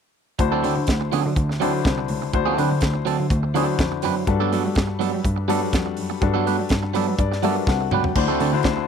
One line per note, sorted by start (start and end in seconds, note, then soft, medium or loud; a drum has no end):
0.39 0.55 D2 loud
0.39 1.00 D3 medium
0.39 1.00 D4 medium
0.39 1.00 E4 medium
0.39 1.00 F#4 medium
0.39 1.00 C5 medium
0.39 muted clean electric guitar stroke soft
0.39 kick loud
0.39 closed hi-hat medium
0.52 0.61 F#3 medium
0.52 0.62 C4 medium
0.52 0.63 D4 medium
0.52 0.63 A4 medium
0.62 0.72 D3 medium
0.62 0.79 F#3 medium
0.62 0.76 C4 medium
0.62 0.75 D4 medium
0.62 0.74 A4 medium
0.62 open hi-hat medium
0.76 0.84 D3 medium
0.76 muted clean electric guitar stroke soft
0.87 1.03 D2 medium
0.87 muted clean electric guitar stroke soft
0.87 kick medium
0.87 snare medium
0.87 closed hi-hat medium
1.01 muted clean electric guitar stroke soft
1.12 1.20 D3 medium
1.12 1.32 F#3 medium
1.12 1.24 C4 medium
1.12 1.24 D4 medium
1.12 1.23 A4 medium
1.12 open hi-hat medium
1.24 1.33 D3 medium
1.24 muted clean electric guitar stroke soft
1.36 1.52 D2 medium
1.36 muted clean electric guitar stroke soft
1.36 kick loud
1.36 closed hi-hat medium
1.49 muted clean electric guitar stroke soft
1.49 snare soft
1.60 2.06 D3 medium
1.60 1.76 D3 medium
1.60 1.80 F#3 medium
1.60 1.73 C4 medium
1.60 2.06 D4 medium
1.60 1.73 D4 medium
1.60 2.06 E4 medium
1.60 2.06 F#4 medium
1.60 1.72 A4 medium
1.60 2.06 C5 medium
1.60 open hi-hat medium
1.73 muted clean electric guitar stroke soft
1.85 2.01 C2 medium
1.85 muted clean electric guitar stroke soft
1.85 kick loud
1.85 snare medium
1.85 closed hi-hat medium
1.98 muted clean electric guitar stroke soft
2.08 2.25 C#2 medium
2.08 open hi-hat medium
2.22 muted clean electric guitar stroke soft
2.33 2.49 D2 medium
2.33 2.94 D3 medium
2.33 2.94 D4 medium
2.33 2.94 E4 medium
2.33 2.94 F#4 medium
2.33 2.94 C5 medium
2.33 muted clean electric guitar stroke soft
2.33 kick medium
2.33 closed hi-hat medium
2.46 2.56 F#3 medium
2.46 2.57 C4 medium
2.46 2.57 D4 medium
2.46 2.59 A4 medium
2.57 2.66 D3 loud
2.57 2.73 F#3 medium
2.57 2.71 C4 medium
2.57 2.71 D4 medium
2.57 2.71 B4 medium
2.57 open hi-hat medium
2.71 2.78 D3 medium
2.71 muted clean electric guitar stroke soft
2.81 2.98 D2 medium
2.81 muted clean electric guitar stroke soft
2.81 kick medium
2.81 snare medium
2.81 closed hi-hat medium
2.94 muted clean electric guitar stroke soft
3.05 3.15 D3 medium
3.05 3.25 F#3 medium
3.05 3.18 C4 medium
3.05 3.18 D4 medium
3.05 3.17 A4 medium
3.05 open hi-hat soft
3.18 3.27 D3 medium
3.18 muted clean electric guitar stroke soft
3.30 3.46 D2 loud
3.30 kick loud
3.30 closed hi-hat medium
3.43 muted clean electric guitar stroke soft
3.54 4.00 D3 medium
3.54 3.71 D3 medium
3.54 3.75 F#3 medium
3.54 3.68 C4 medium
3.54 4.00 D4 medium
3.54 3.67 D4 medium
3.54 4.00 E4 medium
3.54 4.00 F#4 medium
3.54 3.66 A4 medium
3.54 4.00 C5 medium
3.54 open hi-hat medium
3.68 muted clean electric guitar stroke soft
3.78 3.95 F2 medium
3.78 muted clean electric guitar stroke soft
3.78 kick loud
3.78 snare loud
3.78 closed hi-hat medium
3.92 muted clean electric guitar stroke medium
4.02 4.19 F#2 medium
4.02 4.23 F#3 medium
4.02 4.16 C4 medium
4.02 4.16 D4 medium
4.02 4.16 B4 loud
4.02 open hi-hat medium
4.17 muted clean electric guitar stroke soft
4.27 4.43 G2 loud
4.27 4.88 G3 medium
4.27 4.88 D4 medium
4.27 4.88 F#4 medium
4.27 4.89 A4 medium
4.27 4.89 B4 medium
4.27 muted clean electric guitar stroke soft
4.27 kick medium
4.27 closed hi-hat medium
4.40 4.51 F#3 medium
4.40 4.51 B3 medium
4.40 4.52 D4 medium
4.40 4.52 A4 medium
4.52 4.68 F#3 medium
4.52 4.60 G3 loud
4.52 4.65 B3 medium
4.52 4.64 D4 medium
4.52 4.63 A4 medium
4.52 open hi-hat medium
4.64 4.73 G3 medium
4.64 muted clean electric guitar stroke soft
4.75 4.92 G2 medium
4.75 muted clean electric guitar stroke soft
4.75 kick loud
4.75 snare loud
4.75 closed hi-hat medium
4.87 muted clean electric guitar stroke soft
4.99 5.20 F#3 medium
4.99 5.09 G3 medium
4.99 5.12 B3 medium
4.99 5.12 D4 medium
4.99 5.11 A4 medium
4.99 open hi-hat medium
5.12 5.21 G3 medium
5.12 muted clean electric guitar stroke soft
5.24 5.40 G2 loud
5.24 muted clean electric guitar stroke soft
5.24 kick medium
5.24 closed hi-hat medium
5.36 muted clean electric guitar stroke soft
5.48 5.68 F#3 medium
5.48 5.94 G3 medium
5.48 5.73 G3 loud
5.48 5.62 B3 medium
5.48 5.94 D4 medium
5.48 5.61 D4 medium
5.48 5.94 F#4 medium
5.48 5.94 A4 medium
5.48 5.61 A4 medium
5.48 5.94 B4 medium
5.48 open hi-hat medium
5.62 muted clean electric guitar stroke soft
5.73 5.89 F2 medium
5.73 muted clean electric guitar stroke soft
5.73 kick loud
5.73 snare medium
5.73 closed hi-hat medium
5.86 muted clean electric guitar stroke soft
5.97 6.13 F#2 medium
5.97 open hi-hat medium
6.10 muted clean electric guitar stroke soft
6.21 6.37 G2 loud
6.21 6.82 G3 medium
6.21 6.82 D4 medium
6.21 6.82 F#4 medium
6.21 6.82 A4 medium
6.21 6.83 B4 medium
6.21 muted clean electric guitar stroke soft
6.21 kick loud
6.21 closed hi-hat medium
6.34 6.44 F#3 medium
6.34 6.45 B3 medium
6.34 6.45 D4 medium
6.34 6.47 A4 medium
6.45 6.62 F#3 medium
6.45 6.55 G3 medium
6.45 6.58 B3 medium
6.45 6.58 D4 medium
6.45 6.58 B4 medium
6.45 open hi-hat medium
6.58 6.66 G3 medium
6.58 muted clean electric guitar stroke soft
6.69 6.86 G2 medium
6.69 muted clean electric guitar stroke soft
6.69 kick medium
6.69 snare loud
6.69 closed hi-hat medium
6.83 muted clean electric guitar stroke soft
6.94 7.14 F#3 medium
6.94 7.03 G3 medium
6.94 7.08 B3 medium
6.94 7.07 D4 medium
6.94 7.06 A4 medium
6.94 7.17 B4 medium
6.94 open hi-hat medium
7.07 7.15 G3 medium
7.07 muted clean electric guitar stroke soft
7.19 7.34 G2 loud
7.19 7.41 D5 medium
7.19 muted clean electric guitar stroke soft
7.19 kick loud
7.19 closed hi-hat medium
7.32 muted clean electric guitar stroke soft
7.32 snare soft
7.43 7.62 F#3 medium
7.43 7.88 G3 medium
7.43 7.59 G3 loud
7.43 7.57 B3 medium
7.43 7.88 D4 medium
7.43 7.56 D4 loud
7.43 7.88 F#4 medium
7.43 7.88 A4 medium
7.43 7.55 A4 medium
7.43 7.50 A#4 medium
7.43 7.66 E5 medium
7.43 open hi-hat medium
7.50 7.91 B4 medium
7.57 muted clean electric guitar stroke soft
7.67 7.83 C2 loud
7.67 7.90 F#5 medium
7.67 muted clean electric guitar stroke soft
7.67 kick loud
7.67 snare medium
7.81 muted clean electric guitar stroke soft
7.91 8.08 C#2 medium
7.91 8.11 F#3 medium
7.91 8.05 B3 medium
7.91 8.04 D4 medium
7.91 8.04 B4 medium
7.91 8.14 G5 medium
7.91 mid tom medium
8.04 muted clean electric guitar stroke soft
8.04 floor tom medium
8.15 8.24 D2 loud
8.15 8.38 D3 medium
8.15 8.38 D4 medium
8.15 8.38 E4 medium
8.15 8.39 F#4 medium
8.15 8.39 C5 medium
8.15 muted clean electric guitar stroke soft
8.15 kick loud
8.15 crash medium
8.28 8.36 D2 medium
8.28 8.38 A3 medium
8.28 8.39 C4 medium
8.28 8.40 F#4 medium
8.28 8.40 A4 medium
8.39 8.56 D3 loud
8.39 8.56 A3 medium
8.39 8.53 C4 medium
8.39 8.52 F#4 medium
8.39 8.51 A4 medium
8.39 open hi-hat medium
8.53 8.60 D3 medium
8.53 8.60 D4 medium
8.53 8.60 E4 medium
8.53 8.60 F#4 medium
8.53 8.60 C5 medium
8.53 muted clean electric guitar stroke soft
8.63 8.80 D2 medium
8.63 8.87 D3 medium
8.63 8.87 D4 medium
8.63 8.87 E4 medium
8.63 8.87 F#4 medium
8.63 8.87 C5 medium
8.63 muted clean electric guitar stroke soft
8.63 kick loud
8.63 snare loud
8.63 closed hi-hat medium
8.77 muted clean electric guitar stroke soft